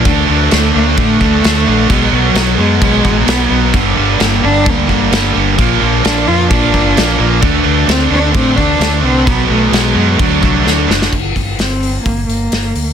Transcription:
<<
  \new Staff \with { instrumentName = "Cello" } { \time 4/4 \key d \phrygian \tempo 4 = 130 r4 a8 bes8 a2 | aes8 fis4 aes8 aes4 b8. r16 | r4 bes8 d'8 bes2 | r4 d'8 f'8 d'2 |
r4 c'8 d'8 c'8 d'4 c'8 | b8 a8 aes4 fis4. r8 | \key g \minor r4 c'4 bes8 bes4. | }
  \new Staff \with { instrumentName = "Distorted electric guitar" } { \clef bass \time 4/4 \key d \phrygian <d a d'>8 <d a d'>8 <d a d'>8 <d a d'>8 <d a d'>8 <d a d'>8 <d a d'>8 <d a d'>8 | <b, fis b>8 <b, fis b>8 <b, fis b>8 <b, fis b>8 <b, fis b>8 <b, fis b>8 <b, fis b>8 <b, fis b>8 | <g, d g>8 <g, d g>8 <g, d g>8 <g, d g>8 <g, d g>8 <g, d g>8 <g, d g>8 <g, d g>8 | <bes, f bes>8 <bes, f bes>8 <bes, f bes>8 <bes, f bes>8 <bes, f bes>8 <bes, f bes>8 <bes, f bes>8 <bes, f bes>8 |
<d a d'>8 <d a d'>8 <d a d'>8 <d a d'>8 <d a d'>8 <d a d'>8 <d a d'>8 <d a d'>8 | <b, fis b>8 <b, fis b>8 <b, fis b>8 <b, fis b>8 <d a d'>8 <d a d'>8 <d a d'>8 <d a d'>8 | \key g \minor r1 | }
  \new Staff \with { instrumentName = "Distorted electric guitar" } { \clef bass \time 4/4 \key d \phrygian <d a d'>2~ <d a d'>8 <d a d'>8 <d a d'>4 | <b, fis b>2~ <b, fis b>8 <b, fis b>8 <b, fis b>4 | <g, d g>2~ <g, d g>8 <g, d g>8 <g, d g>4 | <bes, f bes>2~ <bes, f bes>8 <bes, f bes>8 <bes, f bes>4 |
<d a d'>2~ <d a d'>8 <d a d'>8 <d a d'>4 | <b, fis b>2 <d a d'>2 | \key g \minor r1 | }
  \new Staff \with { instrumentName = "Overdriven electric guitar" } { \clef bass \time 4/4 \key d \phrygian <d a d'>8 <d a d'>8 <d a d'>8 <d a d'>8 <d a d'>8 <d a d'>8 <d a d'>8 <d a d'>8 | <b, fis b>8 <b, fis b>8 <b, fis b>8 <b, fis b>8 <b, fis b>8 <b, fis b>8 <b, fis b>8 <b, fis b>8 | <g, d g>8 <g, d g>8 <g, d g>8 <g, d g>8 <g, d g>8 <g, d g>8 <g, d g>8 <g, d g>8 | <bes, f bes>8 <bes, f bes>8 <bes, f bes>8 <bes, f bes>8 <bes, f bes>8 <bes, f bes>8 <bes, f bes>8 <bes, f bes>8 |
<d a d'>8 <d a d'>8 <d a d'>8 <d a d'>8 <d a d'>8 <d a d'>8 <d a d'>8 <d a d'>8 | <b, fis b>8 <b, fis b>8 <b, fis b>8 <b, fis b>8 <d a d'>8 <d a d'>8 <d a d'>8 <d a d'>8 | \key g \minor r1 | }
  \new Staff \with { instrumentName = "Fingered electric bass" } { \clef bass \time 4/4 \key d \phrygian d,8 d,8 d,8 d,8 a,8 d,8 d,8 bes,,8 | b,,8 b,,8 b,,8 fis,8 b,,8 a,,8 b,,8 b,,8 | g,,8 g,,8 g,,8 g,,8 d,8 g,,8 g,,8 g,,8 | bes,,8 bes,,8 bes,,8 f,8 bes,,8 g,,8 bes,,8 bes,,8 |
d,8 d,8 d,8 d,8 a,8 d,8 d,8 c,8 | b,,8 b,,8 b,,8 fis,8 d,8 c,8 d,8 fis,,8 | \key g \minor g,,8 g,,8 g,,4 g,,8 g,,8 g,,8 d,8 | }
  \new DrumStaff \with { instrumentName = "Drums" } \drummode { \time 4/4 <cymc bd>4 <cymc sn>4 <cymc bd>8 bd8 <cymc sn>4 | <cymc bd>4 <cymc sn>4 <cymc bd>8 bd8 <cymc sn>4 | <cymc bd>4 <cymc sn>4 <cymc bd>8 bd8 <cymc sn>4 | <cymc bd>4 <cymc sn>4 <cymc bd>8 bd8 <cymc sn>4 |
<cymc bd>4 <cymc sn>4 <cymc bd>8 bd8 <cymc sn>4 | <cymc bd>4 <cymc sn>4 <cymc bd>8 bd8 sn8 sn16 sn16 | <cymc bd>8 <hho bd>8 <hho sn>8 hho8 <hho bd>8 hho8 <hho sn>8 hho8 | }
>>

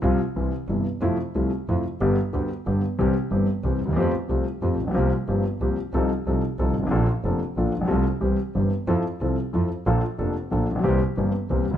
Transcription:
<<
  \new Staff \with { instrumentName = "Grand piano" } { \clef bass \time 3/4 \key f \major \tempo 4 = 183 <c, c f g f'>8 r8 <c, c e g e'>8 r8 <g,, g, c e g e'>8 r8 | <f, c f a e'>8 r8 <c, c f a e'>8 r8 <f, c f a e'>8 r8 | <g,, g, d g b g'>8 r8 <d, d g b g'>8 r8 <g,, g, d g b g'>8 r8 | <c, c e g c' g'>8 r8 <g,, g, e g c' g'>8 r8 <c, c e g c' g'>8 r32 d,32 ees,32 e,32 |
<f, f a c' g'>8 r8 <c, c f a c' g'>8 r8 <f, f a c' g'>8 r32 a,,32 bes,,32 b,,32 | <c, c f bes c' g'>8 r8 <g,, g, f bes c' g'>8 r8 <c, c f bes c' g'>8 r8 | <c, c f c' ees' a'>8 r8 <c, c f c' ees' a'>8 r8 <c, c f c' ees' a'>8 r32 g,,32 aes,,32 a,,32 | <bes,, bes, f bes d' a'>8 r8 <f,, f, f bes d' a'>8 r8 <bes,, bes, f bes d' a'>8 r32 a,,32 bes,,32 b,,32 |
<c, c f a c' a'>8 r8 <c, c e g c' g'>8 r8 <g,, g, e g c' g'>8 r8 | <f, f c' e' a'>8 r8 <c, c f c' e' a'>8 r8 <f, f c' e' a'>8 r8 | <bes,, bes, f bes d' a'>8 r8 <f,, f, f bes d' a'>8 r8 <bes,, bes, f bes d' a'>8 r32 a,,32 bes,,32 b,,32 | <c, c e bes c' g'>8 r8 <g,, g, e bes c' g'>8 r8 <c, c e bes c' g'>8 r32 d,32 ees,32 r32 | }
  \new Staff \with { instrumentName = "Double bass" } { \clef bass \time 3/4 \key f \major c,8 r8 c,8 r8 g,,8 r8 | f,8 r8 c,8 r8 f,8 r8 | g,,8 r8 d,8 r8 g,,8 r8 | c,8 r8 g,,8 r8 c,8 ees,8 |
f,8 r8 c,8 r8 f,8 bes,,8 | c,8 r8 g,,8 r8 c,8 r8 | c,8 r8 c,8 r8 c,8 aes,,8 | bes,,8 r8 f,,8 r8 bes,,8 bes,,8 |
c,8 r8 c,8 r8 g,,8 r8 | f,8 r8 c,8 r8 f,8 r8 | bes,,8 r8 f,,8 r8 bes,,8 bes,,8 | c,8 r8 g,,8 r8 c,8 ees,8 | }
>>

